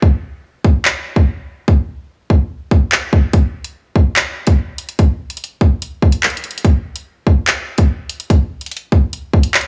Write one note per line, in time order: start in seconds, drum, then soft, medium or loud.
0.02 kick loud
0.65 kick loud
0.85 clap loud
1.16 kick medium
1.68 kick loud
2.30 kick medium
2.71 kick medium
2.92 clap loud
3.13 kick loud
3.33 kick loud
3.33 closed hi-hat medium
3.64 closed hi-hat medium
3.96 kick medium
4.16 clap loud
4.16 closed hi-hat medium
4.47 kick medium
4.47 closed hi-hat medium
4.78 closed hi-hat medium
4.89 closed hi-hat medium
4.99 kick loud
4.99 closed hi-hat medium
5.30 closed hi-hat medium
5.37 closed hi-hat medium
5.44 closed hi-hat medium
5.61 kick medium
5.82 closed hi-hat medium
6.02 kick medium
6.12 closed hi-hat medium
6.23 clap loud
6.23 closed hi-hat soft
6.30 closed hi-hat soft
6.37 closed hi-hat soft
6.44 closed hi-hat medium
6.51 closed hi-hat medium
6.58 closed hi-hat medium
6.65 kick loud
6.65 closed hi-hat medium
6.96 closed hi-hat medium
7.27 kick medium
7.47 clap loud
7.47 closed hi-hat medium
7.78 kick loud
7.78 closed hi-hat medium
8.09 closed hi-hat medium
8.20 closed hi-hat medium
8.30 kick loud
8.30 closed hi-hat medium
8.61 closed hi-hat soft
8.66 closed hi-hat medium
8.71 closed hi-hat medium
8.77 closed hi-hat medium
8.92 kick medium
9.13 closed hi-hat medium
9.33 kick medium
9.43 closed hi-hat medium
9.54 clap loud
9.54 closed hi-hat medium
9.61 closed hi-hat medium